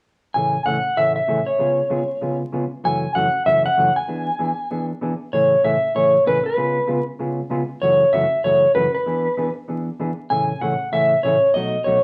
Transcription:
0.34 A2 C#3 E3 A3 C#4 G#4 G#5
0.66 A2 C#3 E3 A3 C#4 G#4 F#5
0.97 A2 C#3 E3 A3 C#4 G#4 E5
1.16 E5
1.27 A2 C#3 E3 A3 C#4 G#4
1.46 C#5
1.59 C#3 G#3 B3 F4 G#4
1.90 C#3 G#3 B3 F4 G#4
2.21 C#3 G#3 B3 F4 G#4
2.52 C#3 G#3 B3 F4 G#4
2.84 F#2 C#3 E3 A3 C#4 F#4 G#5
3.15 F#2 C#3 E3 A3 C#4 F#4 F#5
3.46 F#2 C#3 E3 A3 C#4 F#4 E5
3.66 F#5
3.77 F#2 C#3 E3 A3 C#4 F#4
3.96 G#5
4.08 E3 B3 D4 G#4
4.39 E3 B3 D4 G#4
4.71 E3 B3 D4 G#4
5.01 E3 B3 D4 G#4
5.33 A2 C#3 E3 A3 C#4 G#4 C#5
5.64 A2 C#3 E3 A3 C#4 G#4 E5
5.95 A2 C#3 E3 A3 C#4 G#4 C#5
6.26 A2 C#3 E3 A3 C#4 G#4 B4
6.46 B4
6.57 C#3 G#3 B3 F4 G#4
6.87 C#3 G#3 B3 F4 G#4
7.19 C#3 G#3 B3 F4 G#4
7.50 C#3 G#3 B3 F4 G#4
7.82 F#2 C#3 E3 A3 C#4 F#4 C#5
8.13 F#2 C#3 E3 A3 C#4 F#4 E5
8.44 F#2 C#3 E3 A3 C#4 F#4 C#5
8.74 F#2 C#3 E3 A3 C#4 F#4 B4
8.95 B4
9.06 E3 B3 D4 G#4
9.37 E3 B3 D4 G#4
9.68 E3 B3 D4 G#4
10.00 E3 B3 D4 G#4
10.30 A2 C#3 E3 A3 C#4 G#4 G#5
10.61 A2 C#3 E3 A3 C#4 G#4 F#5
10.92 A2 C#3 E3 A3 C#4 G#4 E5
11.23 A2 C#3 E3 A3 C#4 G#4 C#5
11.54 B2 F#3 A3 D#4 F#4 D#5
11.84 B2 F#3 A3 D#4 F#4 C#5

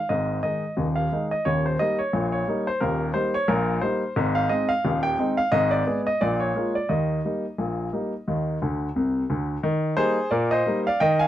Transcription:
0.09 G#1 G#2 D#5
0.43 D#3 G#3 D#4 D#5
0.77 D#1 D#2
0.96 F5
1.12 D#3 G#3 D#4
1.31 D#5
1.45 D#1 D#2 C#5
1.66 C5
1.79 G3 A#3 D#4 D#5
1.99 C#5
2.13 A#1 A#2
2.32 C#5
2.48 G3 A#3 D#4
2.67 C5
2.80 D#1 D#2 A#4
3.14 G3 A#3 D#4 C5
3.34 C#5
3.48 A#1 A#2 A#4
3.81 G3 A#3 D#4 C5
4.16 G#1 G#2
4.35 F5
4.49 G#3 C4 D#4 D#5
4.69 F5
4.85 D#1 D#2
5.03 G5
5.19 G#3 C4 D#4
5.37 F5
5.52 G#1 G#2 D#5
5.71 D5
5.87 G#3 B3 G#4
6.07 D#5
6.21 A#1 A#2 D5
6.40 C#5
6.55 G#3 A#3 F4
6.75 D5
6.89 D#2 D#3 D#5
7.25 G3 A#3 D#4
7.58 A#1 A#2
7.93 G3 A#3 D#4
8.28 D#2 D#3
8.62 D2 D3
8.96 C2 C3
9.30 D2 D3
9.63 D#3
9.97 G3 A#3 D#4 G#4 C5
10.31 A#2 A#4 D5
10.51 C5 D#5
10.67 G3 A#3 D#4
10.87 D5 F5
11.00 D#3 D#5 G5
11.19 F5 G#5

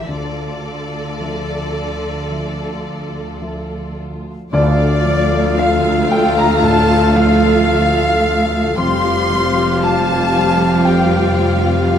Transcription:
Already playing: G3 D4 A#4
0.07 D2 D3 F4 A4 D5
1.20 F3 A4 E5
2.31 F3 A4 E5
3.42 F3 A4 E5
4.52 D2 D3 A3 F4 A4 D5 F5
4.78 A4
5.05 F3
5.32 A4
5.57 F4 F5
5.83 A4
6.09 F4 G5
6.35 A4 A#5
6.62 A2 A5
6.89 A4
7.15 F3 F5
7.42 A4
7.68 F4
7.95 A4
8.22 F4
8.50 A4
8.77 F1 F2 G3 C4 F4 G4 F5 C6
9.04 G4
9.30 F3
9.56 G4
9.82 F4 A5
10.10 G4
10.34 F4
10.60 G4
10.85 C3 G5
11.11 G4
11.37 F3
11.62 G4
11.88 F4 F5

